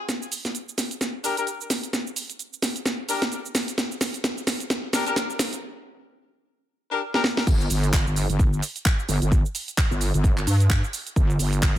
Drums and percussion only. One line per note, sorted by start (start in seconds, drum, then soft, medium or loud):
0.09 snare soft
0.09 closed hi-hat soft
0.09 shaker soft
0.22 shaker soft
0.32 open hi-hat medium
0.32 shaker medium
0.45 snare soft
0.45 closed hi-hat medium
0.45 shaker soft
0.55 closed hi-hat medium
0.55 shaker soft
0.69 shaker soft
0.78 snare soft
0.78 open hi-hat medium
0.78 shaker medium
0.91 closed hi-hat medium
0.91 shaker soft
1.01 snare soft
1.01 closed hi-hat medium
1.01 shaker soft
1.24 open hi-hat loud
1.24 shaker medium
1.37 closed hi-hat medium
1.37 shaker soft
1.47 closed hi-hat medium
1.47 shaker soft
1.61 shaker soft
1.70 snare medium
1.70 open hi-hat medium
1.70 shaker medium
1.83 closed hi-hat medium
1.83 shaker soft
1.93 snare medium
1.93 closed hi-hat soft
1.93 shaker soft
2.07 shaker soft
2.16 open hi-hat loud
2.16 shaker medium
2.30 closed hi-hat medium
2.30 shaker soft
2.39 closed hi-hat medium
2.39 shaker soft
2.53 shaker soft
2.62 snare medium
2.62 open hi-hat medium
2.62 shaker medium
2.76 closed hi-hat medium
2.76 shaker soft
2.86 snare medium
2.86 closed hi-hat medium
2.86 shaker soft
3.09 open hi-hat loud
3.09 shaker medium
3.22 snare medium
3.22 closed hi-hat medium
3.22 shaker soft
3.32 closed hi-hat medium
3.32 shaker soft
3.45 shaker soft
3.55 snare medium
3.55 open hi-hat loud
3.55 shaker medium
3.68 closed hi-hat medium
3.68 shaker soft
3.78 snare medium
3.78 closed hi-hat soft
3.78 shaker soft
3.92 shaker soft
4.01 snare medium
4.01 open hi-hat loud
4.01 shaker medium
4.14 closed hi-hat medium
4.14 shaker soft
4.24 snare medium
4.24 closed hi-hat medium
4.24 shaker soft
4.38 shaker soft
4.47 snare medium
4.47 open hi-hat medium
4.47 shaker medium
4.60 closed hi-hat medium
4.60 shaker soft
4.70 snare medium
4.70 closed hi-hat soft
4.70 shaker soft
4.93 snare medium
4.93 open hi-hat loud
4.93 shaker medium
5.07 closed hi-hat medium
5.07 shaker soft
5.16 snare medium
5.16 closed hi-hat medium
5.16 shaker soft
5.30 shaker soft
5.39 snare medium
5.39 open hi-hat loud
5.39 shaker medium
5.53 closed hi-hat medium
5.53 shaker soft
7.14 snare medium
7.24 snare medium
7.37 snare medium
7.47 kick loud
7.47 closed hi-hat medium
7.47 crash loud
7.47 shaker soft
7.61 shaker soft
7.70 open hi-hat loud
7.70 shaker medium
7.83 closed hi-hat medium
7.83 shaker soft
7.93 kick loud
7.93 clap loud
7.93 shaker soft
8.07 shaker soft
8.16 open hi-hat medium
8.16 shaker medium
8.30 closed hi-hat medium
8.30 shaker soft
8.39 kick loud
8.39 closed hi-hat medium
8.39 shaker soft
8.53 shaker soft
8.62 open hi-hat loud
8.62 shaker medium
8.76 closed hi-hat medium
8.76 shaker soft
8.86 kick loud
8.86 clap loud
8.86 closed hi-hat medium
8.86 shaker soft
8.99 shaker soft
9.09 open hi-hat loud
9.09 shaker medium
9.22 closed hi-hat medium
9.22 shaker soft
9.32 kick loud
9.32 closed hi-hat medium
9.32 shaker soft
9.45 shaker soft
9.55 open hi-hat loud
9.55 shaker medium
9.68 closed hi-hat medium
9.68 shaker soft
9.78 kick loud
9.78 clap loud
9.78 closed hi-hat medium
9.78 shaker soft
9.92 shaker soft
10.01 open hi-hat medium
10.01 shaker medium
10.14 closed hi-hat medium
10.14 shaker soft
10.24 kick loud
10.24 closed hi-hat medium
10.24 shaker soft
10.38 clap soft
10.38 shaker soft
10.47 open hi-hat loud
10.47 shaker medium
10.60 closed hi-hat medium
10.60 shaker soft
10.70 kick loud
10.70 clap loud
10.70 shaker soft
10.84 shaker soft
10.93 open hi-hat loud
10.93 shaker medium
11.07 closed hi-hat medium
11.07 shaker soft
11.16 kick loud
11.16 closed hi-hat medium
11.16 shaker soft
11.30 shaker soft
11.39 open hi-hat loud
11.39 shaker medium
11.53 closed hi-hat medium
11.53 shaker soft
11.62 kick loud
11.62 clap loud
11.62 shaker soft